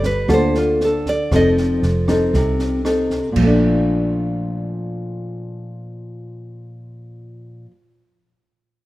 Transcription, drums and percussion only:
0.03 kick soft
0.03 snare soft
0.29 kick medium
0.29 cross-stick medium
0.29 snare soft
0.55 snare soft
0.81 snare soft
1.06 kick soft
1.06 snare soft
1.31 kick medium
1.31 cross-stick soft
1.31 snare soft
1.58 snare soft
1.83 snare soft
2.08 kick soft
2.08 cross-stick medium
2.08 snare soft
2.34 kick medium
2.34 snare soft
2.59 snare soft
2.85 cross-stick medium
2.85 snare soft
3.10 kick soft
3.10 snare soft
3.36 kick medium
3.36 crash medium

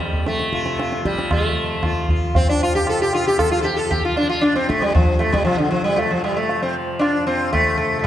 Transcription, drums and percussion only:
0.00 tabla te medium
0.13 tabla ge medium
0.26 tabla te medium
0.39 tabla te medium
0.53 tabla ke medium
0.66 tabla te medium
0.79 tabla te medium
0.92 tabla te medium
1.05 tabla ke medium
1.19 tabla te medium
1.31 tabla na medium
1.31 tabla ge medium
1.83 tabla na medium
1.83 tabla ge medium
2.09 tabla ge soft
2.35 tabla tin medium
2.35 tabla ge medium
2.87 tabla na medium
3.13 tabla na medium
3.39 tabla na medium
3.39 tabla ge medium
3.65 tabla te medium
3.91 tabla tin medium
3.91 tabla ge medium
4.16 tabla na medium
4.43 tabla te medium
4.56 tabla te medium
4.70 tabla ke medium
4.83 tabla te medium
4.95 tabla tin medium
4.95 tabla ge medium
5.21 tabla na medium
5.34 tabla ke medium
5.47 tabla na medium
5.99 tabla tin medium
6.24 tabla na medium
6.49 tabla tin medium
7.02 tabla na medium
7.54 tabla na medium
7.54 tabla ge medium

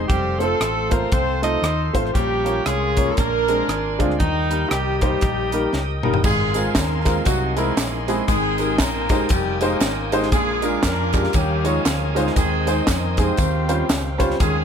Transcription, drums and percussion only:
0.10 kick loud
0.10 closed hi-hat medium
0.40 closed hi-hat soft
0.61 cross-stick loud
0.61 closed hi-hat medium
0.91 kick medium
0.91 closed hi-hat medium
1.12 kick loud
1.12 closed hi-hat medium
1.43 closed hi-hat medium
1.64 cross-stick medium
1.64 closed hi-hat medium
1.95 kick medium
1.95 closed hi-hat medium
2.06 cross-stick soft
2.15 kick medium
2.15 closed hi-hat medium
2.46 closed hi-hat medium
2.66 cross-stick loud
2.66 closed hi-hat medium
2.97 kick medium
2.97 closed hi-hat medium
3.17 kick loud
3.17 closed hi-hat medium
3.48 closed hi-hat medium
3.69 cross-stick medium
3.69 closed hi-hat medium
4.00 kick medium
4.00 closed hi-hat medium
4.10 cross-stick soft
4.20 kick medium
4.20 closed hi-hat medium
4.51 closed hi-hat medium
4.71 cross-stick loud
4.71 closed hi-hat medium
5.01 kick medium
5.01 closed hi-hat medium
5.21 kick loud
5.21 closed hi-hat medium
5.52 closed hi-hat medium
5.73 snare soft
6.03 mid tom medium
6.14 floor tom medium
6.24 kick loud
6.24 crash medium
6.24 tambourine medium
6.54 closed hi-hat medium
6.54 tambourine medium
6.75 kick medium
6.75 snare loud
6.75 clap loud
6.75 closed hi-hat medium
6.75 tambourine medium
7.05 kick medium
7.05 clap medium
7.05 closed hi-hat medium
7.05 tambourine soft
7.25 kick loud
7.25 closed hi-hat medium
7.25 tambourine medium
7.57 closed hi-hat medium
7.57 tambourine soft
7.77 snare loud
7.77 clap loud
7.77 closed hi-hat medium
7.77 tambourine medium
8.08 closed hi-hat medium
8.08 tambourine soft
8.28 kick medium
8.28 closed hi-hat medium
8.28 tambourine medium
8.58 closed hi-hat medium
8.58 tambourine soft
8.78 kick medium
8.78 snare loud
8.78 clap medium
8.78 closed hi-hat medium
8.78 tambourine medium
9.09 kick loud
9.09 closed hi-hat medium
9.09 tambourine medium
9.29 kick loud
9.29 closed hi-hat loud
9.29 tambourine medium
9.61 closed hi-hat medium
9.61 tambourine medium
9.81 snare loud
9.81 clap medium
9.81 closed hi-hat medium
9.81 tambourine medium
10.12 closed hi-hat medium
10.12 tambourine medium
10.23 snare soft
10.32 kick loud
10.32 closed hi-hat medium
10.32 tambourine medium
10.62 closed hi-hat medium
10.62 tambourine medium
10.83 kick medium
10.83 snare loud
10.83 clap loud
10.83 closed hi-hat medium
10.83 tambourine loud
11.13 kick medium
11.13 clap medium
11.13 closed hi-hat medium
11.13 tambourine medium
11.24 snare soft
11.33 kick loud
11.33 closed hi-hat medium
11.33 tambourine medium
11.65 closed hi-hat medium
11.65 tambourine soft
11.86 snare medium
11.86 clap medium
11.86 closed hi-hat medium
11.86 tambourine medium
12.16 closed hi-hat medium
12.16 tambourine soft
12.27 snare soft
12.36 kick loud
12.36 closed hi-hat medium
12.36 tambourine medium
12.67 closed hi-hat medium
12.67 tambourine soft
12.87 kick medium
12.87 snare loud
12.87 clap loud
12.87 closed hi-hat loud
12.87 tambourine loud
13.17 kick loud
13.17 closed hi-hat medium
13.17 tambourine medium
13.37 kick loud
13.37 closed hi-hat medium
13.37 tambourine medium
13.69 closed hi-hat medium
13.69 tambourine medium
13.89 snare loud
13.89 clap medium
13.89 closed hi-hat medium
13.89 tambourine medium
14.20 kick medium
14.20 closed hi-hat medium
14.20 tambourine medium
14.30 snare soft
14.40 kick loud
14.40 closed hi-hat medium
14.40 tambourine medium

